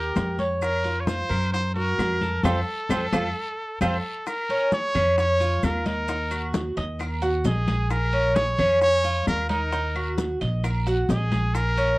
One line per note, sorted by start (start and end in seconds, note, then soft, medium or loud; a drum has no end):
0.00 0.12 D#2 medium
0.00 0.37 G4 medium
0.00 0.40 A#4 medium
0.16 1.24 F2 loud
0.16 high bongo medium
0.16 low bongo medium
0.16 high conga medium
0.16 short guiro medium
0.16 maracas medium
0.39 0.83 C#5 medium
0.39 high conga medium
0.39 short guiro medium
0.39 maracas soft
0.61 1.02 A#4 medium
0.61 high bongo medium
0.61 high conga soft
0.61 long guiro medium
0.61 claves medium
0.61 maracas medium
0.84 1.29 F4 medium
0.84 high bongo soft
0.84 high conga soft
0.84 maracas soft
1.00 1.08 C#5 medium
1.06 1.52 C5 loud
1.06 high bongo medium
1.06 high conga loud
1.06 short guiro medium
1.06 maracas medium
1.29 1.95 F#2 loud
1.29 1.74 A#4 medium
1.29 high conga soft
1.29 short guiro medium
1.29 claves medium
1.29 maracas soft
1.52 1.74 C5 loud
1.52 high bongo medium
1.52 high conga soft
1.52 maracas medium
1.75 2.20 F#4 medium
1.75 2.45 A#4 loud
1.75 high bongo soft
1.75 high conga soft
1.75 maracas soft
1.99 2.41 F2 medium
1.99 high bongo medium
1.99 low bongo medium
1.99 high conga medium
1.99 short guiro medium
1.99 claves medium
1.99 maracas medium
2.21 2.43 A4 medium
2.21 high bongo soft
2.21 high conga medium
2.21 short guiro medium
2.21 maracas soft
2.44 2.61 F2 medium
2.44 2.59 C4 medium
2.44 2.59 F4 medium
2.44 3.81 A4 medium
2.44 2.59 A4 medium
2.44 low bongo loud
2.44 high conga loud
2.44 long guiro loud
2.44 claves medium
2.44 maracas loud
2.89 3.07 F2 medium
2.89 3.05 C4 medium
2.89 3.05 F4 medium
2.89 3.05 A4 medium
2.89 low bongo loud
2.89 high conga medium
2.89 long guiro loud
2.89 claves medium
2.89 maracas loud
3.13 3.30 F2 loud
3.13 3.28 C4 medium
3.13 3.28 F4 medium
3.13 3.28 A4 loud
3.13 low bongo loud
3.13 high conga medium
3.13 long guiro medium
3.13 claves loud
3.13 maracas medium
3.81 3.98 F2 loud
3.81 3.96 C4 medium
3.81 3.96 F4 medium
3.81 4.29 A4 medium
3.81 3.96 A4 medium
3.81 low bongo medium
3.81 high conga medium
3.81 long guiro medium
3.81 claves loud
3.81 maracas loud
4.27 4.73 A#4 medium
4.27 high bongo medium
4.27 high conga soft
4.27 long guiro medium
4.27 claves medium
4.27 maracas medium
4.49 4.72 C#4 medium
4.49 high conga soft
4.72 4.94 G#4 medium
4.72 5.15 C#5 loud
4.72 high bongo medium
4.72 high conga medium
4.72 short guiro medium
4.72 maracas medium
4.95 5.59 F2 loud
4.95 5.39 C#4 medium
4.95 high bongo soft
4.95 high conga soft
4.95 low conga medium
4.95 short guiro medium
4.95 claves medium
4.95 maracas soft
5.18 5.66 C#5 loud
5.18 high bongo medium
5.18 high conga soft
5.18 long guiro medium
5.18 maracas medium
5.40 5.85 F4 medium
5.40 high bongo soft
5.40 high conga soft
5.40 maracas medium
5.63 6.71 D#2 loud
5.63 5.86 A#4 medium
5.63 high bongo soft
5.63 low bongo medium
5.63 high conga medium
5.63 short guiro medium
5.63 claves medium
5.63 maracas medium
5.86 6.07 D#4 medium
5.86 6.51 A#4 medium
5.86 high bongo soft
5.86 high conga medium
5.86 short guiro medium
5.86 maracas soft
6.08 6.31 D#4 medium
6.08 high bongo medium
6.08 high conga soft
6.08 long guiro medium
6.08 maracas medium
6.31 6.75 F#4 medium
6.31 high conga soft
6.31 claves medium
6.31 maracas medium
6.54 high bongo medium
6.54 high conga loud
6.54 short guiro medium
6.54 maracas medium
6.77 7.41 D#2 loud
6.77 6.99 D#5 medium
6.77 high bongo soft
6.77 high conga soft
6.77 short guiro medium
6.77 maracas soft
6.99 7.22 A#4 medium
6.99 high bongo medium
6.99 high conga soft
6.99 long guiro medium
6.99 claves medium
6.99 maracas medium
7.22 7.44 F#4 medium
7.22 high bongo soft
7.22 high conga soft
7.22 maracas medium
7.44 8.52 A#1 loud
7.44 7.93 G#4 medium
7.44 7.67 D#5 medium
7.44 high bongo soft
7.44 low bongo medium
7.44 high conga medium
7.44 short guiro medium
7.44 maracas medium
7.68 8.12 G#4 medium
7.68 high bongo soft
7.68 high conga medium
7.68 short guiro medium
7.68 maracas soft
7.90 8.37 A#4 loud
7.90 high bongo medium
7.90 high conga soft
7.90 long guiro medium
7.90 claves medium
7.90 maracas medium
8.13 8.35 C#4 medium
8.13 high conga soft
8.36 8.58 G#4 medium
8.36 8.82 C#5 loud
8.36 high bongo medium
8.36 high conga loud
8.36 short guiro medium
8.36 maracas medium
8.59 9.23 F2 loud
8.59 9.03 C#4 loud
8.59 high bongo soft
8.59 high conga soft
8.59 low conga medium
8.59 short guiro medium
8.59 claves medium
8.59 maracas soft
8.82 9.24 C#5 loud
8.82 high bongo medium
8.82 high conga soft
8.82 long guiro medium
8.82 maracas medium
9.04 9.48 F4 medium
9.04 high bongo soft
9.04 high conga soft
9.04 maracas medium
9.27 10.35 D#2 loud
9.27 9.49 A#4 loud
9.27 high bongo soft
9.27 low bongo medium
9.27 high conga medium
9.27 short guiro medium
9.27 claves medium
9.27 maracas medium
9.49 9.71 D#4 medium
9.49 10.14 A#4 medium
9.49 high bongo soft
9.49 high conga medium
9.49 short guiro medium
9.49 maracas soft
9.72 9.95 D#4 medium
9.72 high bongo medium
9.72 high conga soft
9.72 long guiro medium
9.72 maracas medium
9.95 10.40 F#4 medium
9.95 high conga soft
9.95 claves medium
10.18 high bongo medium
10.18 high conga medium
10.18 short guiro medium
10.18 maracas medium
10.41 11.05 A#1 loud
10.41 10.63 D#5 medium
10.41 high bongo soft
10.41 high conga soft
10.41 short guiro medium
10.41 maracas soft
10.63 10.86 A#4 medium
10.63 high bongo medium
10.63 high conga soft
10.63 long guiro medium
10.63 claves medium
10.63 maracas medium
10.87 11.09 F#4 medium
10.87 high bongo soft
10.87 high conga soft
10.87 maracas medium
11.09 11.98 A#1 loud
11.09 11.56 G#4 medium
11.09 11.31 D#5 medium
11.09 high bongo soft
11.09 low bongo medium
11.09 high conga medium
11.09 short guiro medium
11.09 maracas medium
11.32 11.76 G#4 medium
11.32 high bongo soft
11.32 high conga medium
11.32 short guiro medium
11.32 maracas soft
11.54 11.98 A#4 loud
11.54 high bongo medium
11.54 high conga soft
11.54 long guiro medium
11.54 claves medium
11.54 maracas medium
11.77 11.98 C#4 medium
11.77 high conga soft
11.77 maracas medium